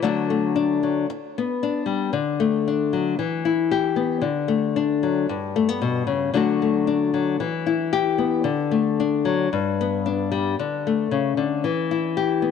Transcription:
0, 0, Header, 1, 3, 480
1, 0, Start_track
1, 0, Key_signature, 2, "major"
1, 0, Tempo, 526778
1, 30, Time_signature, 4, 2, 24, 8
1, 11399, End_track
2, 0, Start_track
2, 0, Title_t, "Nylon-string guitar"
2, 0, Program_c, 0, 24
2, 22, Note_on_c, 0, 50, 72
2, 27, Note_on_c, 0, 54, 59
2, 33, Note_on_c, 0, 57, 62
2, 38, Note_on_c, 0, 62, 56
2, 264, Note_off_c, 0, 57, 0
2, 275, Note_on_c, 0, 57, 55
2, 496, Note_off_c, 0, 62, 0
2, 507, Note_on_c, 0, 62, 62
2, 746, Note_off_c, 0, 54, 0
2, 756, Note_on_c, 0, 54, 52
2, 954, Note_off_c, 0, 50, 0
2, 957, Note_off_c, 0, 62, 0
2, 962, Note_off_c, 0, 54, 0
2, 989, Note_off_c, 0, 57, 0
2, 1257, Note_on_c, 0, 59, 63
2, 1484, Note_on_c, 0, 62, 56
2, 1693, Note_on_c, 0, 55, 57
2, 1909, Note_off_c, 0, 55, 0
2, 1924, Note_off_c, 0, 62, 0
2, 1931, Note_off_c, 0, 59, 0
2, 1939, Note_on_c, 0, 50, 68
2, 2185, Note_on_c, 0, 57, 55
2, 2438, Note_on_c, 0, 62, 57
2, 2669, Note_on_c, 0, 54, 58
2, 2871, Note_off_c, 0, 50, 0
2, 2876, Note_off_c, 0, 54, 0
2, 2881, Note_off_c, 0, 62, 0
2, 2903, Note_off_c, 0, 57, 0
2, 2904, Note_on_c, 0, 52, 66
2, 3144, Note_on_c, 0, 64, 58
2, 3384, Note_on_c, 0, 67, 68
2, 3610, Note_on_c, 0, 59, 62
2, 3826, Note_off_c, 0, 59, 0
2, 3833, Note_off_c, 0, 64, 0
2, 3833, Note_off_c, 0, 67, 0
2, 3841, Note_on_c, 0, 50, 66
2, 3862, Note_off_c, 0, 52, 0
2, 4083, Note_on_c, 0, 57, 54
2, 4338, Note_on_c, 0, 62, 60
2, 4582, Note_on_c, 0, 54, 57
2, 4781, Note_off_c, 0, 50, 0
2, 4790, Note_off_c, 0, 62, 0
2, 4792, Note_off_c, 0, 54, 0
2, 4811, Note_off_c, 0, 57, 0
2, 4823, Note_on_c, 0, 43, 69
2, 5065, Note_on_c, 0, 57, 64
2, 5181, Note_off_c, 0, 57, 0
2, 5181, Note_on_c, 0, 59, 46
2, 5299, Note_on_c, 0, 47, 68
2, 5525, Note_off_c, 0, 47, 0
2, 5529, Note_on_c, 0, 49, 61
2, 5753, Note_off_c, 0, 43, 0
2, 5769, Note_off_c, 0, 49, 0
2, 5772, Note_on_c, 0, 50, 71
2, 5778, Note_on_c, 0, 54, 56
2, 5781, Note_off_c, 0, 59, 0
2, 5788, Note_on_c, 0, 62, 53
2, 5792, Note_on_c, 0, 57, 57
2, 5805, Note_on_c, 0, 66, 69
2, 6022, Note_off_c, 0, 57, 0
2, 6033, Note_on_c, 0, 57, 53
2, 6251, Note_off_c, 0, 62, 0
2, 6262, Note_on_c, 0, 62, 56
2, 6492, Note_off_c, 0, 54, 0
2, 6503, Note_on_c, 0, 54, 57
2, 6709, Note_off_c, 0, 50, 0
2, 6714, Note_off_c, 0, 54, 0
2, 6714, Note_off_c, 0, 62, 0
2, 6743, Note_on_c, 0, 52, 68
2, 6748, Note_off_c, 0, 57, 0
2, 6754, Note_off_c, 0, 66, 0
2, 6984, Note_on_c, 0, 64, 58
2, 7223, Note_on_c, 0, 67, 74
2, 7456, Note_on_c, 0, 59, 64
2, 7672, Note_off_c, 0, 59, 0
2, 7676, Note_off_c, 0, 64, 0
2, 7676, Note_off_c, 0, 67, 0
2, 7690, Note_on_c, 0, 50, 74
2, 7705, Note_off_c, 0, 52, 0
2, 7940, Note_on_c, 0, 57, 55
2, 8199, Note_on_c, 0, 62, 61
2, 8429, Note_on_c, 0, 54, 65
2, 8632, Note_off_c, 0, 50, 0
2, 8640, Note_off_c, 0, 54, 0
2, 8645, Note_off_c, 0, 62, 0
2, 8665, Note_off_c, 0, 57, 0
2, 8680, Note_on_c, 0, 43, 68
2, 8936, Note_on_c, 0, 59, 65
2, 9165, Note_on_c, 0, 62, 55
2, 9399, Note_on_c, 0, 55, 65
2, 9606, Note_off_c, 0, 55, 0
2, 9608, Note_off_c, 0, 43, 0
2, 9610, Note_off_c, 0, 62, 0
2, 9616, Note_off_c, 0, 59, 0
2, 9653, Note_on_c, 0, 50, 69
2, 9902, Note_on_c, 0, 57, 55
2, 10123, Note_off_c, 0, 50, 0
2, 10126, Note_on_c, 0, 49, 59
2, 10359, Note_off_c, 0, 49, 0
2, 10363, Note_on_c, 0, 50, 58
2, 10598, Note_off_c, 0, 50, 0
2, 10606, Note_on_c, 0, 52, 63
2, 10609, Note_off_c, 0, 57, 0
2, 10853, Note_on_c, 0, 64, 57
2, 11088, Note_on_c, 0, 67, 66
2, 11318, Note_on_c, 0, 59, 58
2, 11399, Note_off_c, 0, 52, 0
2, 11399, Note_off_c, 0, 59, 0
2, 11399, Note_off_c, 0, 64, 0
2, 11399, Note_off_c, 0, 67, 0
2, 11399, End_track
3, 0, Start_track
3, 0, Title_t, "Muted nylon-string guitar strokes"
3, 43, Note_on_c, 9, 29, 61
3, 134, Note_off_c, 9, 29, 0
3, 1001, Note_on_c, 9, 29, 73
3, 1092, Note_off_c, 9, 29, 0
3, 11399, End_track
0, 0, End_of_file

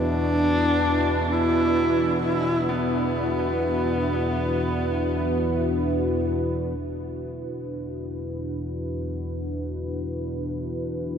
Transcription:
0, 0, Header, 1, 4, 480
1, 0, Start_track
1, 0, Tempo, 500000
1, 10733, End_track
2, 0, Start_track
2, 0, Title_t, "Analog synth pad"
2, 0, Program_c, 0, 89
2, 0, Note_on_c, 0, 62, 73
2, 0, Note_on_c, 0, 64, 60
2, 0, Note_on_c, 0, 66, 57
2, 0, Note_on_c, 0, 71, 69
2, 10733, Note_off_c, 0, 62, 0
2, 10733, Note_off_c, 0, 64, 0
2, 10733, Note_off_c, 0, 66, 0
2, 10733, Note_off_c, 0, 71, 0
2, 10733, End_track
3, 0, Start_track
3, 0, Title_t, "Horsehead fiddle"
3, 0, Program_c, 1, 110
3, 0, Note_on_c, 1, 62, 112
3, 1268, Note_on_c, 1, 64, 104
3, 1283, Note_off_c, 1, 62, 0
3, 2137, Note_off_c, 1, 64, 0
3, 2143, Note_on_c, 1, 64, 106
3, 2583, Note_on_c, 1, 59, 85
3, 2598, Note_off_c, 1, 64, 0
3, 6072, Note_off_c, 1, 59, 0
3, 10733, End_track
4, 0, Start_track
4, 0, Title_t, "Synth drone"
4, 0, Program_c, 2, 95
4, 0, Note_on_c, 2, 40, 65
4, 0, Note_on_c, 2, 47, 68
4, 6471, Note_off_c, 2, 47, 0
4, 6476, Note_off_c, 2, 40, 0
4, 6482, Note_on_c, 2, 47, 60
4, 6487, Note_on_c, 2, 40, 61
4, 10733, Note_off_c, 2, 40, 0
4, 10733, Note_off_c, 2, 47, 0
4, 10733, End_track
0, 0, End_of_file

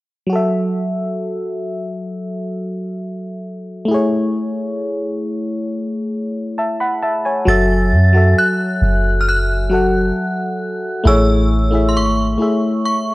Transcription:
0, 0, Header, 1, 4, 480
1, 0, Start_track
1, 0, Tempo, 895522
1, 163, Time_signature, 4, 2, 24, 8
1, 7045, End_track
2, 0, Start_track
2, 0, Title_t, "Synth bell"
2, 0, Program_c, 0, 98
2, 4013, Note_on_c, 0, 93, 107
2, 4494, Note_on_c, 0, 90, 101
2, 4502, Note_off_c, 0, 93, 0
2, 4935, Note_on_c, 0, 89, 71
2, 4944, Note_off_c, 0, 90, 0
2, 4968, Note_off_c, 0, 89, 0
2, 4977, Note_on_c, 0, 90, 90
2, 5935, Note_on_c, 0, 88, 96
2, 5959, Note_off_c, 0, 90, 0
2, 6371, Note_on_c, 0, 84, 64
2, 6385, Note_off_c, 0, 88, 0
2, 6406, Note_off_c, 0, 84, 0
2, 6415, Note_on_c, 0, 85, 89
2, 6868, Note_off_c, 0, 85, 0
2, 6891, Note_on_c, 0, 85, 77
2, 7045, Note_off_c, 0, 85, 0
2, 7045, End_track
3, 0, Start_track
3, 0, Title_t, "FM electric piano"
3, 0, Program_c, 1, 5
3, 144, Note_on_c, 1, 54, 68
3, 160, Note_on_c, 1, 66, 59
3, 177, Note_on_c, 1, 69, 60
3, 192, Note_on_c, 1, 76, 75
3, 265, Control_c, 1, 64, 127
3, 2052, Note_off_c, 1, 54, 0
3, 2060, Note_off_c, 1, 66, 0
3, 2064, Note_on_c, 1, 57, 69
3, 2069, Note_off_c, 1, 69, 0
3, 2076, Note_off_c, 1, 76, 0
3, 2080, Note_on_c, 1, 64, 62
3, 2091, Control_c, 1, 64, 0
3, 2096, Note_on_c, 1, 68, 64
3, 2112, Note_on_c, 1, 73, 76
3, 2194, Control_c, 1, 64, 127
3, 3516, Note_off_c, 1, 73, 0
3, 3529, Note_on_c, 1, 81, 57
3, 3532, Note_on_c, 1, 76, 52
3, 3640, Note_off_c, 1, 81, 0
3, 3642, Note_off_c, 1, 76, 0
3, 3649, Note_on_c, 1, 83, 60
3, 3652, Note_on_c, 1, 78, 57
3, 3760, Note_off_c, 1, 83, 0
3, 3762, Note_off_c, 1, 78, 0
3, 3768, Note_on_c, 1, 81, 68
3, 3772, Note_on_c, 1, 76, 59
3, 3879, Note_off_c, 1, 81, 0
3, 3882, Note_off_c, 1, 76, 0
3, 3889, Note_on_c, 1, 80, 57
3, 3893, Note_on_c, 1, 73, 50
3, 3972, Note_off_c, 1, 57, 0
3, 3980, Note_off_c, 1, 64, 0
3, 3988, Note_off_c, 1, 68, 0
3, 3996, Note_on_c, 1, 54, 90
3, 4004, Note_on_c, 1, 66, 77
3, 4010, Control_c, 1, 64, 0
3, 4012, Note_on_c, 1, 69, 82
3, 4020, Note_on_c, 1, 76, 100
3, 4097, Control_c, 1, 64, 127
3, 4114, Note_off_c, 1, 80, 0
3, 4116, Note_off_c, 1, 73, 0
3, 4225, Note_off_c, 1, 54, 0
3, 4229, Note_off_c, 1, 66, 0
3, 4233, Note_off_c, 1, 69, 0
3, 4237, Note_off_c, 1, 76, 0
3, 4357, Note_on_c, 1, 54, 68
3, 4365, Note_on_c, 1, 66, 65
3, 4373, Note_on_c, 1, 69, 61
3, 4381, Note_on_c, 1, 76, 77
3, 4886, Note_off_c, 1, 54, 0
3, 4890, Note_off_c, 1, 66, 0
3, 4894, Note_off_c, 1, 69, 0
3, 4898, Note_off_c, 1, 76, 0
3, 5196, Note_on_c, 1, 54, 74
3, 5204, Note_on_c, 1, 66, 65
3, 5212, Note_on_c, 1, 69, 63
3, 5220, Note_on_c, 1, 78, 74
3, 5651, Note_off_c, 1, 54, 0
3, 5655, Note_off_c, 1, 66, 0
3, 5659, Note_off_c, 1, 69, 0
3, 5663, Note_off_c, 1, 78, 0
3, 5916, Note_on_c, 1, 57, 88
3, 5924, Note_on_c, 1, 64, 85
3, 5931, Control_c, 1, 64, 0
3, 5932, Note_on_c, 1, 68, 82
3, 5940, Note_on_c, 1, 73, 97
3, 6018, Control_c, 1, 64, 127
3, 6145, Note_off_c, 1, 57, 0
3, 6149, Note_off_c, 1, 64, 0
3, 6153, Note_off_c, 1, 68, 0
3, 6157, Note_off_c, 1, 73, 0
3, 6274, Note_on_c, 1, 57, 68
3, 6282, Note_on_c, 1, 64, 61
3, 6290, Note_on_c, 1, 68, 62
3, 6298, Note_on_c, 1, 76, 72
3, 6504, Note_off_c, 1, 57, 0
3, 6508, Note_off_c, 1, 64, 0
3, 6512, Note_off_c, 1, 68, 0
3, 6516, Note_off_c, 1, 76, 0
3, 6635, Note_on_c, 1, 57, 62
3, 6643, Note_on_c, 1, 64, 53
3, 6651, Note_on_c, 1, 68, 55
3, 6659, Note_on_c, 1, 76, 67
3, 6940, Note_off_c, 1, 57, 0
3, 6944, Note_off_c, 1, 64, 0
3, 6948, Note_off_c, 1, 68, 0
3, 6952, Note_off_c, 1, 76, 0
3, 7045, End_track
4, 0, Start_track
4, 0, Title_t, "808-style bass"
4, 0, Program_c, 2, 38
4, 4007, Note_on_c, 2, 30, 107
4, 4245, Note_on_c, 2, 42, 88
4, 4253, Note_off_c, 2, 30, 0
4, 4472, Note_off_c, 2, 42, 0
4, 4726, Note_on_c, 2, 30, 101
4, 5423, Note_off_c, 2, 30, 0
4, 5925, Note_on_c, 2, 33, 104
4, 6404, Note_on_c, 2, 32, 95
4, 6412, Note_off_c, 2, 33, 0
4, 6632, Note_off_c, 2, 32, 0
4, 7045, End_track
0, 0, End_of_file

